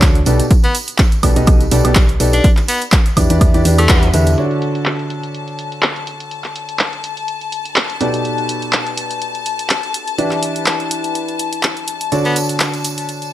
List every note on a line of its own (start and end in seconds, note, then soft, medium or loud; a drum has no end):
0.00 0.24 D2 medium
0.00 0.17 D3 medium
0.00 0.17 D4 medium
0.00 0.17 F#4 medium
0.00 0.17 A4 medium
0.00 0.17 C#5 medium
0.00 0.17 D5 loud
0.00 kick loud
0.00 clap loud
0.00 closed hi-hat medium
0.00 tambourine soft
0.15 closed hi-hat soft
0.26 0.41 B1 loud
0.26 0.43 B2 medium
0.26 0.43 D#4 medium
0.26 0.43 G4 medium
0.26 0.43 A4 medium
0.26 0.43 B4 medium
0.26 0.43 D5 loud
0.26 open hi-hat medium
0.26 tambourine medium
0.40 closed hi-hat medium
0.40 tambourine soft
0.51 kick loud
0.51 closed hi-hat medium
0.51 tambourine soft
0.64 0.76 B3 medium
0.64 closed hi-hat soft
0.64 tambourine soft
0.75 open hi-hat loud
0.75 tambourine medium
0.88 closed hi-hat medium
0.88 tambourine soft
0.98 kick loud
0.98 clap loud
0.98 closed hi-hat medium
0.98 tambourine medium
1.12 closed hi-hat soft
1.12 tambourine soft
1.23 1.34 B1 medium
1.23 1.34 B2 medium
1.23 1.34 D#4 medium
1.23 1.34 G4 medium
1.23 1.34 A4 medium
1.23 1.34 B4 medium
1.23 1.34 D5 loud
1.23 kick medium
1.23 open hi-hat medium
1.23 tambourine medium
1.23 high woodblock medium
1.36 1.69 B1 loud
1.36 1.62 B2 loud
1.36 1.62 D#4 medium
1.36 1.62 G4 medium
1.36 1.62 A4 medium
1.36 1.62 B4 medium
1.36 1.62 D#5 loud
1.36 closed hi-hat medium
1.36 tambourine soft
1.47 kick loud
1.47 closed hi-hat medium
1.47 tambourine soft
1.47 high woodblock medium
1.61 closed hi-hat soft
1.61 tambourine soft
1.71 1.82 B1 loud
1.71 1.83 B2 medium
1.71 1.83 D#4 medium
1.71 1.83 G4 medium
1.71 1.83 A4 medium
1.71 1.83 B4 medium
1.71 1.83 D5 loud
1.71 open hi-hat loud
1.71 tambourine medium
1.85 2.18 B1 medium
1.85 2.00 B2 medium
1.85 2.00 D#4 medium
1.85 2.00 G4 medium
1.85 2.00 A4 medium
1.85 2.00 B4 medium
1.85 2.00 D5 loud
1.85 closed hi-hat medium
1.85 high woodblock medium
1.95 kick loud
1.95 clap loud
1.95 closed hi-hat medium
1.95 tambourine soft
2.09 closed hi-hat soft
2.20 2.41 B1 medium
2.20 2.43 D#4 medium
2.20 2.43 G4 medium
2.20 2.43 A4 medium
2.20 2.43 B4 medium
2.20 2.43 D5 medium
2.20 open hi-hat medium
2.20 tambourine medium
2.33 2.50 D4 medium
2.33 closed hi-hat medium
2.33 tambourine soft
2.44 kick loud
2.44 closed hi-hat medium
2.44 tambourine medium
2.57 clap soft
2.57 closed hi-hat soft
2.57 tambourine soft
2.68 2.82 B3 loud
2.68 open hi-hat loud
2.68 tambourine medium
2.82 closed hi-hat medium
2.82 tambourine soft
2.92 kick loud
2.92 clap loud
2.92 closed hi-hat medium
2.92 tambourine soft
3.06 closed hi-hat soft
3.06 tambourine soft
3.17 3.27 E2 medium
3.17 3.28 E3 medium
3.17 3.28 D4 medium
3.17 3.28 E4 medium
3.17 3.28 G4 medium
3.17 3.28 B4 medium
3.17 3.28 D5 medium
3.17 kick medium
3.17 open hi-hat medium
3.17 tambourine medium
3.17 high woodblock medium
3.30 3.52 E2 loud
3.30 3.51 E3 medium
3.30 3.51 D4 medium
3.30 3.51 E4 medium
3.30 3.51 G4 medium
3.30 3.51 B4 medium
3.30 3.51 D5 loud
3.30 closed hi-hat medium
3.30 tambourine soft
3.41 kick loud
3.41 closed hi-hat medium
3.41 tambourine soft
3.41 high woodblock medium
3.54 3.63 E2 medium
3.54 3.63 E3 medium
3.54 3.63 D4 medium
3.54 3.63 E4 medium
3.54 3.63 G4 medium
3.54 3.63 B4 medium
3.54 3.63 D5 loud
3.54 closed hi-hat soft
3.54 tambourine soft
3.65 3.87 E2 loud
3.65 3.82 E3 medium
3.65 3.82 D4 medium
3.65 3.82 E4 medium
3.65 3.82 G4 medium
3.65 3.82 B4 medium
3.65 3.82 D5 loud
3.65 open hi-hat loud
3.65 tambourine medium
3.78 4.14 A3 loud
3.78 closed hi-hat medium
3.78 tambourine soft
3.78 high woodblock medium
3.89 4.11 E2 loud
3.89 4.06 E3 medium
3.89 4.06 D4 medium
3.89 4.06 E4 medium
3.89 4.06 G4 medium
3.89 4.06 B4 medium
3.89 4.06 F#5 loud
3.89 kick loud
3.89 clap loud
3.89 closed hi-hat medium
3.89 tambourine soft
4.03 closed hi-hat soft
4.03 tambourine soft
4.14 4.36 E2 loud
4.14 4.36 D3 medium
4.14 4.36 D4 medium
4.14 4.37 E4 medium
4.14 4.37 G4 medium
4.14 4.37 B4 medium
4.14 4.37 E5 loud
4.14 open hi-hat medium
4.14 tambourine medium
4.26 closed hi-hat medium
4.26 tambourine soft
4.38 7.98 D3 medium
4.38 7.98 D4 medium
4.38 7.98 F#4 medium
4.38 7.98 A4 medium
4.38 7.98 C#5 medium
4.38 7.98 D5 medium
4.38 13.33 A5 medium
4.38 closed hi-hat medium
4.51 closed hi-hat soft
4.62 closed hi-hat medium
4.75 closed hi-hat soft
4.86 clap loud
4.86 closed hi-hat soft
4.99 closed hi-hat soft
5.10 closed hi-hat medium
5.23 closed hi-hat soft
5.34 closed hi-hat soft
5.48 closed hi-hat soft
5.59 closed hi-hat medium
5.72 closed hi-hat soft
5.82 clap loud
5.82 closed hi-hat soft
5.96 closed hi-hat soft
6.07 closed hi-hat medium
6.20 closed hi-hat soft
6.31 closed hi-hat soft
6.44 clap soft
6.44 closed hi-hat soft
6.56 closed hi-hat medium
6.69 closed hi-hat soft
6.79 clap loud
6.79 closed hi-hat soft
6.93 closed hi-hat soft
7.04 closed hi-hat medium
7.17 closed hi-hat soft
7.28 closed hi-hat soft
7.41 closed hi-hat soft
7.52 closed hi-hat medium
7.65 closed hi-hat soft
7.76 clap loud
7.76 closed hi-hat soft
7.90 closed hi-hat soft
8.01 10.16 B2 medium
8.01 10.16 D#4 medium
8.01 10.16 G4 medium
8.01 10.16 A4 medium
8.01 10.16 B4 medium
8.01 10.16 D5 medium
8.01 closed hi-hat medium
8.14 closed hi-hat soft
8.25 closed hi-hat soft
8.38 closed hi-hat soft
8.49 closed hi-hat medium
8.62 closed hi-hat soft
8.73 clap loud
8.73 closed hi-hat soft
8.87 closed hi-hat soft
8.97 closed hi-hat medium
9.11 closed hi-hat soft
9.22 closed hi-hat soft
9.35 closed hi-hat soft
9.46 closed hi-hat medium
9.59 closed hi-hat soft
9.70 clap loud
9.70 closed hi-hat soft
9.83 closed hi-hat soft
9.94 closed hi-hat medium
10.07 closed hi-hat soft
10.18 12.09 E3 medium
10.18 12.09 D4 medium
10.18 12.09 E4 medium
10.18 12.09 G4 medium
10.18 12.09 B4 medium
10.18 12.09 D5 medium
10.18 closed hi-hat soft
10.31 clap soft
10.31 closed hi-hat soft
10.43 closed hi-hat medium
10.56 closed hi-hat soft
10.66 clap loud
10.66 closed hi-hat soft
10.80 closed hi-hat soft
10.91 closed hi-hat medium
11.04 closed hi-hat soft
11.15 closed hi-hat soft
11.28 closed hi-hat soft
11.39 closed hi-hat medium
11.53 closed hi-hat soft
11.63 clap loud
11.63 closed hi-hat soft
11.77 closed hi-hat soft
11.88 closed hi-hat medium
12.01 closed hi-hat soft
12.12 13.33 D3 medium
12.12 13.33 D4 medium
12.12 13.33 F#4 medium
12.12 13.33 A4 medium
12.12 13.33 C#5 medium
12.12 13.33 D5 medium
12.12 closed hi-hat soft
12.12 tambourine soft
12.25 12.37 B3 medium
12.25 closed hi-hat soft
12.25 tambourine soft
12.36 closed hi-hat medium
12.36 tambourine medium
12.49 closed hi-hat soft
12.49 tambourine soft
12.60 clap loud
12.60 closed hi-hat soft
12.60 tambourine soft
12.74 closed hi-hat soft
12.74 tambourine soft
12.84 closed hi-hat medium
12.84 tambourine medium
12.98 closed hi-hat soft
12.98 tambourine soft
13.09 closed hi-hat soft
13.09 tambourine soft
13.22 closed hi-hat soft
13.22 tambourine soft